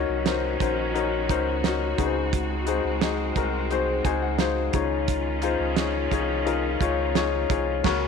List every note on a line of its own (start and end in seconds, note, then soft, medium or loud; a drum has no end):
0.00 1.96 D#3 medium
0.00 0.57 C#4 medium
0.00 1.96 C#4 medium
0.00 0.25 D#4 medium
0.00 0.26 F#4 medium
0.00 4.70 F#4 medium
0.00 0.27 A#4 medium
0.00 0.96 C#5 loud
0.09 0.57 C2 medium
0.25 0.51 D#4 medium
0.25 0.51 F#4 medium
0.25 0.52 A#4 medium
0.25 0.52 C5 medium
0.25 snare medium
0.25 closed hi-hat medium
0.60 1.31 A#1 medium
0.60 0.86 D#4 medium
0.60 0.86 F#4 medium
0.60 0.86 A#4 medium
0.60 0.87 C5 medium
0.60 kick medium
0.60 closed hi-hat medium
0.94 1.20 D#4 medium
0.94 1.20 F#4 medium
0.94 1.21 A#4 medium
0.94 1.21 C#5 medium
0.94 closed hi-hat medium
1.29 1.94 C#2 medium
1.29 1.55 D#4 medium
1.29 1.55 F#4 medium
1.29 1.55 A#4 medium
1.29 1.55 C5 medium
1.29 kick medium
1.29 closed hi-hat medium
1.64 1.89 D#4 medium
1.64 1.90 F#4 medium
1.64 1.90 A#4 medium
1.64 1.90 C#5 medium
1.64 snare medium
1.64 closed hi-hat medium
1.98 2.80 C#2 medium
1.98 2.98 C#3 medium
1.98 4.72 G#3 medium
1.98 4.72 C4 medium
1.98 2.53 D#4 medium
1.98 2.53 F#4 medium
1.98 2.54 G#4 medium
1.98 2.05 B4 medium
1.98 kick medium
1.98 closed hi-hat medium
2.06 2.57 C5 medium
2.33 kick loud
2.33 closed hi-hat medium
2.66 2.92 D#4 medium
2.66 2.92 F#4 medium
2.66 2.93 G#4 medium
2.66 2.93 C5 medium
2.66 closed hi-hat medium
2.84 3.32 C#2 medium
3.01 3.27 D#4 medium
3.01 3.27 F#4 medium
3.01 3.27 G#4 medium
3.01 3.28 D#5 medium
3.01 snare loud
3.01 closed hi-hat medium
3.36 4.01 C2 medium
3.36 3.61 D#4 medium
3.36 3.62 F#4 medium
3.36 3.62 G#4 medium
3.36 3.62 A#4 medium
3.36 kick medium
3.36 closed hi-hat medium
3.71 3.96 D#4 medium
3.71 3.96 F#4 medium
3.71 3.97 G#4 medium
3.71 3.97 C5 medium
3.71 closed hi-hat medium
4.04 4.70 C#2 loud
4.04 4.30 D#4 medium
4.04 4.30 F#4 medium
4.04 4.31 G#4 medium
4.04 4.31 C5 medium
4.04 4.21 G#5 medium
4.04 kick medium
4.04 closed hi-hat medium
4.22 4.38 F#5 medium
4.38 4.64 D#4 medium
4.38 4.65 F#4 medium
4.38 4.65 G#4 medium
4.38 4.65 C5 medium
4.38 5.04 F5 medium
4.38 snare medium
4.38 closed hi-hat medium
4.73 5.56 C#2 medium
4.73 5.73 C#3 medium
4.73 7.81 D#3 medium
4.73 7.81 C#4 medium
4.73 5.29 D#4 medium
4.73 5.29 F4 medium
4.73 7.81 F4 medium
4.73 5.29 G#4 medium
4.73 5.29 C#5 medium
4.73 kick medium
4.73 closed hi-hat medium
5.08 kick loud
5.08 closed hi-hat medium
5.42 5.68 D#4 medium
5.42 5.68 F4 medium
5.42 5.68 G#4 medium
5.42 5.69 C5 medium
5.42 closed hi-hat medium
5.60 6.08 C#2 medium
5.76 6.02 D#4 medium
5.76 6.03 F4 medium
5.76 6.03 G#4 medium
5.76 6.03 C#5 medium
5.76 snare loud
5.76 closed hi-hat medium
6.11 6.77 C2 medium
6.11 6.37 D#4 medium
6.11 6.37 F4 medium
6.11 6.37 G#4 medium
6.11 6.38 C#5 medium
6.11 kick medium
6.11 closed hi-hat medium
6.45 6.71 D#4 medium
6.45 6.71 F4 medium
6.45 6.72 G#4 medium
6.45 6.72 A#4 medium
6.45 closed hi-hat medium
6.80 7.46 C#2 loud
6.80 7.06 D#4 medium
6.80 7.06 F4 medium
6.80 7.06 G#4 medium
6.80 7.07 C#5 medium
6.80 kick medium
6.80 closed hi-hat medium
7.15 7.40 D#4 medium
7.15 7.41 F4 medium
7.15 7.41 G#4 medium
7.15 7.41 C#5 medium
7.15 snare medium
7.15 closed hi-hat medium
7.49 7.82 C2 medium
7.49 7.75 D#4 medium
7.49 7.75 F4 medium
7.49 7.76 G#4 medium
7.49 7.76 C#5 medium
7.49 kick medium
7.49 closed hi-hat medium
7.84 8.08 C#2 medium
7.84 8.08 C#3 loud
7.84 8.08 C#3 medium
7.84 8.08 A#3 medium
7.84 8.07 C#4 loud
7.84 8.08 F#4 medium
7.84 8.08 A#4 medium
7.84 8.08 C#5 medium
7.84 kick loud
7.84 snare loud
7.84 crash medium